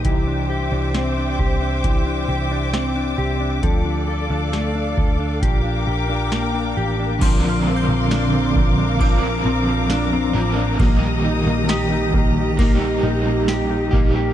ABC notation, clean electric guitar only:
X:1
M:4/4
L:1/16
Q:1/4=67
K:Bb
V:1 name="Clean electric guitar"
[=E,G] D G D C D G D [E,G] D G D C D G D | [F,A] D A D A, D A D [F,G] D G D B, D G D | F, F, C F, D C F, D F, F, C F, D C F, D | B, B, E B, G E B, G B, B, E B, G E B, G |]